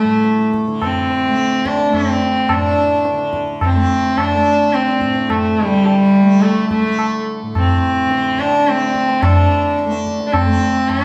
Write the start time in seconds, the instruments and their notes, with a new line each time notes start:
Already playing: tanpura D3 A3, sarangi A3
0.04 tanpura A2
0.24 tabla te
0.39 tabla te
0.53 tabla ke
0.67 tanpura D3, tabla te
0.82 sarangi C4, tabla na, tabla ge
1.10 tabla te
1.28 tanpura A3
1.38 tabla te
1.52 tabla te
1.65 sarangi D4, tabla ke
1.79 tabla te
1.89 tanpura A3, tabla na, tabla ge
1.95 sarangi C#4
2.10 sarangi C4
2.22 tabla te
2.49 tanpura A2, sarangi D4, tabla na, tabla ge
3.05 tabla te
3.12 tanpura D3
3.19 tabla te
3.33 tabla ke
3.48 tabla te
3.61 sarangi C4, tabla na, tabla ge
3.75 tanpura A3
4.18 sarangi D4, tabla na, tabla ge
4.35 tanpura A3
4.73 sarangi C4, tabla te
4.88 tabla te
4.98 tanpura A2, tabla ke
5.16 tabla te
5.29 sarangi A3, tabla na, tabla ge
5.60 tanpura D3
5.67 sarangi G3
5.85 sarangi G3, tabla tin
6.22 tanpura A3
6.42 sarangi A3, tabla na
6.69 sarangi A3, tabla ke
6.84 tanpura A3
6.99 tabla na
7.43 tanpura A2
7.55 sarangi C4, tabla na, tabla ge
8.06 tanpura D3
8.11 tabla te
8.25 tabla te
8.39 sarangi D4, tabla ke
8.53 tabla te
8.66 tanpura A3, sarangi C4, tabla te
8.80 tabla te
8.95 tabla ke
9.09 tabla te
9.22 tanpura D3, sarangi D4, tabla na, tabla ge
9.79 tabla te
9.85 tanpura A3
9.92 tabla te
10.07 tabla ke
10.20 tabla te
10.27 sarangi D4
10.33 sarangi C4, tabla na, tabla ge
10.46 tanpura A3
10.89 sarangi C#4, tabla na, tabla ge